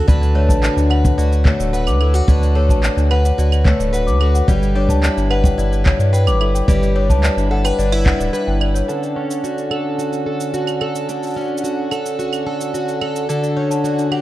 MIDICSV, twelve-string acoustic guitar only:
0, 0, Header, 1, 2, 480
1, 0, Start_track
1, 0, Key_signature, 2, "major"
1, 0, Tempo, 550459
1, 70, Time_signature, 4, 2, 24, 8
1, 12395, End_track
2, 0, Start_track
2, 0, Title_t, "Twelve-string acoustic guitar"
2, 0, Program_c, 0, 25
2, 0, Note_on_c, 0, 61, 57
2, 0, Note_on_c, 0, 66, 62
2, 66, Note_on_c, 0, 50, 92
2, 72, Note_on_c, 0, 71, 76
2, 117, Note_off_c, 0, 61, 0
2, 305, Note_on_c, 0, 57, 63
2, 542, Note_off_c, 0, 66, 0
2, 545, Note_on_c, 0, 66, 60
2, 782, Note_off_c, 0, 71, 0
2, 786, Note_on_c, 0, 71, 67
2, 1018, Note_off_c, 0, 66, 0
2, 1028, Note_on_c, 0, 66, 66
2, 1258, Note_off_c, 0, 57, 0
2, 1268, Note_on_c, 0, 57, 60
2, 1506, Note_off_c, 0, 71, 0
2, 1510, Note_on_c, 0, 71, 69
2, 1745, Note_off_c, 0, 66, 0
2, 1749, Note_on_c, 0, 64, 55
2, 1866, Note_off_c, 0, 64, 0
2, 1866, Note_on_c, 0, 66, 52
2, 1983, Note_off_c, 0, 50, 0
2, 1986, Note_on_c, 0, 50, 85
2, 1988, Note_off_c, 0, 71, 0
2, 1991, Note_on_c, 0, 71, 77
2, 2215, Note_off_c, 0, 57, 0
2, 2226, Note_on_c, 0, 57, 66
2, 2458, Note_off_c, 0, 66, 0
2, 2469, Note_on_c, 0, 66, 61
2, 2706, Note_off_c, 0, 71, 0
2, 2710, Note_on_c, 0, 71, 66
2, 2937, Note_off_c, 0, 66, 0
2, 2948, Note_on_c, 0, 66, 68
2, 3176, Note_off_c, 0, 57, 0
2, 3187, Note_on_c, 0, 57, 61
2, 3422, Note_off_c, 0, 71, 0
2, 3425, Note_on_c, 0, 71, 75
2, 3656, Note_off_c, 0, 66, 0
2, 3666, Note_on_c, 0, 66, 61
2, 3906, Note_on_c, 0, 55, 87
2, 3908, Note_off_c, 0, 71, 0
2, 3911, Note_on_c, 0, 71, 78
2, 3956, Note_off_c, 0, 57, 0
2, 3956, Note_off_c, 0, 66, 0
2, 4146, Note_on_c, 0, 62, 65
2, 4386, Note_on_c, 0, 64, 61
2, 4412, Note_off_c, 0, 50, 0
2, 4615, Note_off_c, 0, 71, 0
2, 4626, Note_on_c, 0, 71, 70
2, 4853, Note_off_c, 0, 64, 0
2, 4864, Note_on_c, 0, 64, 65
2, 5102, Note_off_c, 0, 62, 0
2, 5105, Note_on_c, 0, 62, 64
2, 5334, Note_off_c, 0, 71, 0
2, 5344, Note_on_c, 0, 71, 74
2, 5576, Note_off_c, 0, 64, 0
2, 5586, Note_on_c, 0, 64, 59
2, 5814, Note_off_c, 0, 55, 0
2, 5820, Note_off_c, 0, 71, 0
2, 5825, Note_on_c, 0, 55, 92
2, 5830, Note_on_c, 0, 71, 78
2, 6062, Note_off_c, 0, 62, 0
2, 6066, Note_on_c, 0, 62, 64
2, 6295, Note_off_c, 0, 64, 0
2, 6306, Note_on_c, 0, 64, 61
2, 6544, Note_off_c, 0, 71, 0
2, 6548, Note_on_c, 0, 69, 66
2, 6668, Note_off_c, 0, 69, 0
2, 6668, Note_on_c, 0, 71, 56
2, 6786, Note_off_c, 0, 64, 0
2, 6789, Note_off_c, 0, 62, 0
2, 6789, Note_on_c, 0, 62, 68
2, 6909, Note_off_c, 0, 62, 0
2, 6909, Note_on_c, 0, 64, 58
2, 7029, Note_on_c, 0, 62, 64
2, 7255, Note_off_c, 0, 71, 0
2, 7265, Note_on_c, 0, 71, 76
2, 7496, Note_off_c, 0, 64, 0
2, 7506, Note_on_c, 0, 64, 60
2, 7745, Note_on_c, 0, 50, 72
2, 7747, Note_off_c, 0, 55, 0
2, 7747, Note_off_c, 0, 71, 0
2, 7751, Note_on_c, 0, 69, 66
2, 7796, Note_off_c, 0, 64, 0
2, 7986, Note_off_c, 0, 62, 0
2, 7989, Note_on_c, 0, 61, 56
2, 8229, Note_on_c, 0, 66, 50
2, 8462, Note_off_c, 0, 69, 0
2, 8466, Note_on_c, 0, 69, 57
2, 8704, Note_off_c, 0, 66, 0
2, 8707, Note_on_c, 0, 66, 55
2, 8946, Note_off_c, 0, 69, 0
2, 8949, Note_on_c, 0, 69, 54
2, 9186, Note_off_c, 0, 66, 0
2, 9189, Note_on_c, 0, 66, 54
2, 9425, Note_off_c, 0, 69, 0
2, 9428, Note_on_c, 0, 69, 57
2, 9664, Note_off_c, 0, 50, 0
2, 9668, Note_on_c, 0, 50, 73
2, 9669, Note_off_c, 0, 69, 0
2, 9672, Note_on_c, 0, 69, 63
2, 9904, Note_off_c, 0, 61, 0
2, 9907, Note_on_c, 0, 61, 53
2, 10144, Note_off_c, 0, 66, 0
2, 10147, Note_on_c, 0, 66, 53
2, 10386, Note_off_c, 0, 69, 0
2, 10390, Note_on_c, 0, 69, 61
2, 10625, Note_off_c, 0, 66, 0
2, 10629, Note_on_c, 0, 66, 57
2, 10866, Note_off_c, 0, 69, 0
2, 10869, Note_on_c, 0, 69, 57
2, 11107, Note_off_c, 0, 66, 0
2, 11110, Note_on_c, 0, 66, 55
2, 11345, Note_off_c, 0, 69, 0
2, 11349, Note_on_c, 0, 69, 61
2, 11585, Note_off_c, 0, 50, 0
2, 11589, Note_on_c, 0, 50, 75
2, 11590, Note_off_c, 0, 69, 0
2, 11594, Note_on_c, 0, 69, 69
2, 11825, Note_off_c, 0, 61, 0
2, 11829, Note_on_c, 0, 61, 57
2, 12066, Note_off_c, 0, 66, 0
2, 12070, Note_on_c, 0, 66, 57
2, 12305, Note_off_c, 0, 69, 0
2, 12309, Note_on_c, 0, 67, 58
2, 12395, Note_off_c, 0, 50, 0
2, 12395, Note_off_c, 0, 61, 0
2, 12395, Note_off_c, 0, 66, 0
2, 12395, Note_off_c, 0, 67, 0
2, 12395, End_track
0, 0, End_of_file